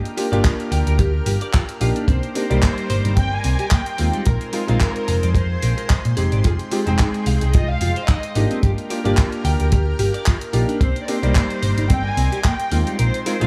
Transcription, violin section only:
0, 0, Header, 1, 2, 480
1, 0, Start_track
1, 0, Tempo, 545455
1, 1833, Time_signature, 4, 2, 24, 8
1, 11853, End_track
2, 0, Start_track
2, 0, Title_t, "Violin section"
2, 0, Program_c, 0, 48
2, 1830, Note_on_c, 0, 72, 94
2, 2055, Note_off_c, 0, 72, 0
2, 2072, Note_on_c, 0, 72, 103
2, 2758, Note_off_c, 0, 72, 0
2, 2791, Note_on_c, 0, 79, 111
2, 2923, Note_on_c, 0, 80, 116
2, 2925, Note_off_c, 0, 79, 0
2, 3266, Note_on_c, 0, 79, 109
2, 3272, Note_off_c, 0, 80, 0
2, 3643, Note_off_c, 0, 79, 0
2, 3750, Note_on_c, 0, 70, 99
2, 3975, Note_off_c, 0, 70, 0
2, 3988, Note_on_c, 0, 70, 104
2, 4676, Note_off_c, 0, 70, 0
2, 4711, Note_on_c, 0, 72, 89
2, 5397, Note_off_c, 0, 72, 0
2, 5679, Note_on_c, 0, 68, 89
2, 5785, Note_off_c, 0, 68, 0
2, 5919, Note_on_c, 0, 68, 99
2, 6601, Note_off_c, 0, 68, 0
2, 6631, Note_on_c, 0, 75, 104
2, 6764, Note_on_c, 0, 77, 115
2, 6765, Note_off_c, 0, 75, 0
2, 7106, Note_on_c, 0, 75, 100
2, 7112, Note_off_c, 0, 77, 0
2, 7483, Note_off_c, 0, 75, 0
2, 9507, Note_on_c, 0, 72, 96
2, 9682, Note_off_c, 0, 72, 0
2, 9695, Note_on_c, 0, 74, 72
2, 9751, Note_on_c, 0, 72, 101
2, 9752, Note_off_c, 0, 74, 0
2, 10472, Note_off_c, 0, 72, 0
2, 10475, Note_on_c, 0, 79, 107
2, 10607, Note_off_c, 0, 79, 0
2, 10608, Note_on_c, 0, 80, 119
2, 10954, Note_off_c, 0, 80, 0
2, 10954, Note_on_c, 0, 79, 114
2, 11326, Note_off_c, 0, 79, 0
2, 11429, Note_on_c, 0, 72, 102
2, 11654, Note_off_c, 0, 72, 0
2, 11672, Note_on_c, 0, 72, 98
2, 11853, Note_off_c, 0, 72, 0
2, 11853, End_track
0, 0, End_of_file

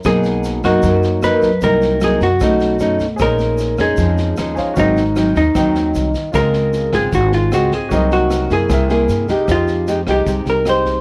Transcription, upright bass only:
0, 0, Header, 1, 2, 480
1, 0, Start_track
1, 0, Tempo, 393185
1, 57, Time_signature, 4, 2, 24, 8
1, 13440, End_track
2, 0, Start_track
2, 0, Title_t, "Upright bass"
2, 0, Program_c, 0, 32
2, 61, Note_on_c, 0, 35, 94
2, 731, Note_off_c, 0, 35, 0
2, 782, Note_on_c, 0, 42, 85
2, 1003, Note_off_c, 0, 42, 0
2, 1018, Note_on_c, 0, 42, 94
2, 1465, Note_off_c, 0, 42, 0
2, 1499, Note_on_c, 0, 42, 84
2, 1722, Note_off_c, 0, 42, 0
2, 1975, Note_on_c, 0, 36, 94
2, 2648, Note_off_c, 0, 36, 0
2, 2697, Note_on_c, 0, 42, 79
2, 2921, Note_off_c, 0, 42, 0
2, 2937, Note_on_c, 0, 35, 92
2, 3384, Note_off_c, 0, 35, 0
2, 3414, Note_on_c, 0, 42, 81
2, 3639, Note_off_c, 0, 42, 0
2, 3901, Note_on_c, 0, 34, 91
2, 4571, Note_off_c, 0, 34, 0
2, 4623, Note_on_c, 0, 41, 80
2, 4844, Note_off_c, 0, 41, 0
2, 4857, Note_on_c, 0, 41, 94
2, 5304, Note_off_c, 0, 41, 0
2, 5352, Note_on_c, 0, 39, 82
2, 5569, Note_off_c, 0, 39, 0
2, 5821, Note_on_c, 0, 32, 101
2, 6491, Note_off_c, 0, 32, 0
2, 6542, Note_on_c, 0, 39, 90
2, 6763, Note_off_c, 0, 39, 0
2, 6777, Note_on_c, 0, 39, 101
2, 7224, Note_off_c, 0, 39, 0
2, 7268, Note_on_c, 0, 36, 86
2, 7486, Note_off_c, 0, 36, 0
2, 7738, Note_on_c, 0, 37, 97
2, 8409, Note_off_c, 0, 37, 0
2, 8461, Note_on_c, 0, 32, 88
2, 8682, Note_off_c, 0, 32, 0
2, 8700, Note_on_c, 0, 32, 104
2, 9145, Note_off_c, 0, 32, 0
2, 9185, Note_on_c, 0, 37, 90
2, 9405, Note_off_c, 0, 37, 0
2, 9661, Note_on_c, 0, 36, 93
2, 10330, Note_off_c, 0, 36, 0
2, 10380, Note_on_c, 0, 42, 81
2, 10601, Note_off_c, 0, 42, 0
2, 10616, Note_on_c, 0, 36, 101
2, 11062, Note_off_c, 0, 36, 0
2, 11095, Note_on_c, 0, 43, 85
2, 11318, Note_off_c, 0, 43, 0
2, 11575, Note_on_c, 0, 41, 85
2, 12246, Note_off_c, 0, 41, 0
2, 12295, Note_on_c, 0, 36, 80
2, 12518, Note_off_c, 0, 36, 0
2, 12532, Note_on_c, 0, 36, 81
2, 12757, Note_off_c, 0, 36, 0
2, 12768, Note_on_c, 0, 36, 81
2, 13440, Note_off_c, 0, 36, 0
2, 13440, End_track
0, 0, End_of_file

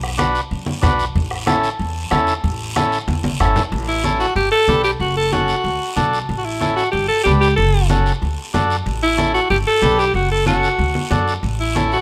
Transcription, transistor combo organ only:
0, 0, Header, 1, 2, 480
1, 0, Start_track
1, 0, Tempo, 321371
1, 1722, Time_signature, 4, 2, 24, 8
1, 17943, End_track
2, 0, Start_track
2, 0, Title_t, "Transistor combo organ"
2, 0, Program_c, 0, 18
2, 262, Note_on_c, 0, 62, 79
2, 272, Note_on_c, 0, 66, 64
2, 277, Note_on_c, 0, 71, 88
2, 608, Note_off_c, 0, 62, 0
2, 613, Note_off_c, 0, 66, 0
2, 616, Note_off_c, 0, 71, 0
2, 1219, Note_on_c, 0, 62, 84
2, 1233, Note_on_c, 0, 66, 79
2, 1236, Note_on_c, 0, 71, 87
2, 1566, Note_off_c, 0, 62, 0
2, 1574, Note_off_c, 0, 66, 0
2, 1575, Note_off_c, 0, 71, 0
2, 2184, Note_on_c, 0, 61, 83
2, 2191, Note_on_c, 0, 64, 66
2, 2197, Note_on_c, 0, 69, 93
2, 2529, Note_off_c, 0, 61, 0
2, 2532, Note_off_c, 0, 64, 0
2, 2535, Note_off_c, 0, 69, 0
2, 3145, Note_on_c, 0, 61, 80
2, 3154, Note_on_c, 0, 64, 71
2, 3159, Note_on_c, 0, 69, 95
2, 3489, Note_off_c, 0, 61, 0
2, 3493, Note_off_c, 0, 64, 0
2, 3496, Note_off_c, 0, 69, 0
2, 4117, Note_on_c, 0, 61, 80
2, 4125, Note_on_c, 0, 64, 69
2, 4129, Note_on_c, 0, 69, 82
2, 4454, Note_off_c, 0, 61, 0
2, 4459, Note_off_c, 0, 64, 0
2, 4460, Note_off_c, 0, 69, 0
2, 5079, Note_on_c, 0, 61, 83
2, 5079, Note_on_c, 0, 64, 70
2, 5091, Note_on_c, 0, 69, 86
2, 5415, Note_off_c, 0, 61, 0
2, 5415, Note_off_c, 0, 64, 0
2, 5421, Note_off_c, 0, 69, 0
2, 6033, Note_on_c, 0, 61, 65
2, 6038, Note_on_c, 0, 64, 53
2, 6044, Note_on_c, 0, 69, 71
2, 6372, Note_off_c, 0, 61, 0
2, 6374, Note_off_c, 0, 64, 0
2, 6377, Note_off_c, 0, 69, 0
2, 6993, Note_on_c, 0, 62, 64
2, 6998, Note_on_c, 0, 67, 61
2, 7008, Note_on_c, 0, 71, 68
2, 7332, Note_off_c, 0, 62, 0
2, 7334, Note_off_c, 0, 67, 0
2, 7339, Note_off_c, 0, 71, 0
2, 7958, Note_on_c, 0, 61, 59
2, 7967, Note_on_c, 0, 66, 64
2, 7974, Note_on_c, 0, 69, 69
2, 8294, Note_off_c, 0, 61, 0
2, 8298, Note_off_c, 0, 66, 0
2, 8302, Note_off_c, 0, 69, 0
2, 8904, Note_on_c, 0, 62, 78
2, 8906, Note_on_c, 0, 66, 77
2, 8914, Note_on_c, 0, 69, 83
2, 9247, Note_off_c, 0, 62, 0
2, 9248, Note_off_c, 0, 66, 0
2, 9251, Note_off_c, 0, 69, 0
2, 9861, Note_on_c, 0, 61, 64
2, 9873, Note_on_c, 0, 64, 62
2, 9876, Note_on_c, 0, 69, 76
2, 10205, Note_off_c, 0, 61, 0
2, 10211, Note_off_c, 0, 64, 0
2, 10213, Note_off_c, 0, 69, 0
2, 10834, Note_on_c, 0, 62, 68
2, 10837, Note_on_c, 0, 67, 63
2, 10845, Note_on_c, 0, 71, 78
2, 11171, Note_off_c, 0, 62, 0
2, 11173, Note_off_c, 0, 67, 0
2, 11177, Note_off_c, 0, 71, 0
2, 11792, Note_on_c, 0, 61, 62
2, 11803, Note_on_c, 0, 66, 64
2, 11809, Note_on_c, 0, 69, 76
2, 12130, Note_off_c, 0, 61, 0
2, 12136, Note_off_c, 0, 66, 0
2, 12138, Note_off_c, 0, 69, 0
2, 12749, Note_on_c, 0, 62, 78
2, 12754, Note_on_c, 0, 66, 68
2, 12759, Note_on_c, 0, 69, 91
2, 13089, Note_off_c, 0, 62, 0
2, 13091, Note_off_c, 0, 66, 0
2, 13094, Note_off_c, 0, 69, 0
2, 13702, Note_on_c, 0, 61, 62
2, 13703, Note_on_c, 0, 64, 61
2, 13709, Note_on_c, 0, 69, 68
2, 14045, Note_off_c, 0, 61, 0
2, 14046, Note_off_c, 0, 64, 0
2, 14049, Note_off_c, 0, 69, 0
2, 14663, Note_on_c, 0, 62, 70
2, 14666, Note_on_c, 0, 67, 59
2, 14673, Note_on_c, 0, 71, 74
2, 15006, Note_off_c, 0, 62, 0
2, 15007, Note_off_c, 0, 67, 0
2, 15011, Note_off_c, 0, 71, 0
2, 15623, Note_on_c, 0, 61, 63
2, 15628, Note_on_c, 0, 66, 60
2, 15632, Note_on_c, 0, 69, 78
2, 15966, Note_off_c, 0, 61, 0
2, 15969, Note_off_c, 0, 66, 0
2, 15971, Note_off_c, 0, 69, 0
2, 16586, Note_on_c, 0, 62, 82
2, 16595, Note_on_c, 0, 66, 70
2, 16603, Note_on_c, 0, 69, 88
2, 16928, Note_off_c, 0, 62, 0
2, 16932, Note_off_c, 0, 66, 0
2, 16936, Note_off_c, 0, 69, 0
2, 17550, Note_on_c, 0, 61, 66
2, 17556, Note_on_c, 0, 64, 60
2, 17564, Note_on_c, 0, 69, 71
2, 17890, Note_off_c, 0, 61, 0
2, 17893, Note_off_c, 0, 64, 0
2, 17897, Note_off_c, 0, 69, 0
2, 17943, End_track
0, 0, End_of_file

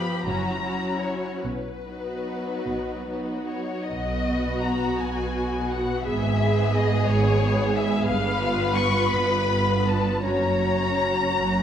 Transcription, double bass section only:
0, 0, Header, 1, 2, 480
1, 0, Start_track
1, 0, Key_signature, 5, "major"
1, 0, Tempo, 737101
1, 413, Tempo, 815217
1, 886, Time_signature, 6, 3, 24, 8
1, 2333, Tempo, 740741
1, 2813, Tempo, 705882
1, 3773, Tempo, 676437
1, 5693, Tempo, 749064
1, 7534, End_track
2, 0, Start_track
2, 0, Title_t, "Double bass section"
2, 0, Program_c, 0, 48
2, 0, Note_on_c, 0, 31, 61
2, 75, Note_off_c, 0, 31, 0
2, 171, Note_on_c, 0, 30, 56
2, 788, Note_off_c, 0, 30, 0
2, 886, Note_on_c, 0, 35, 40
2, 1519, Note_off_c, 0, 35, 0
2, 1618, Note_on_c, 0, 35, 39
2, 2246, Note_off_c, 0, 35, 0
2, 2339, Note_on_c, 0, 35, 52
2, 2977, Note_off_c, 0, 35, 0
2, 3068, Note_on_c, 0, 35, 55
2, 3695, Note_off_c, 0, 35, 0
2, 3782, Note_on_c, 0, 32, 62
2, 4420, Note_off_c, 0, 32, 0
2, 4510, Note_on_c, 0, 32, 67
2, 5133, Note_off_c, 0, 32, 0
2, 5215, Note_on_c, 0, 31, 66
2, 5843, Note_off_c, 0, 31, 0
2, 5922, Note_on_c, 0, 31, 64
2, 6561, Note_off_c, 0, 31, 0
2, 6650, Note_on_c, 0, 30, 50
2, 7287, Note_off_c, 0, 30, 0
2, 7374, Note_on_c, 0, 30, 51
2, 7534, Note_off_c, 0, 30, 0
2, 7534, End_track
0, 0, End_of_file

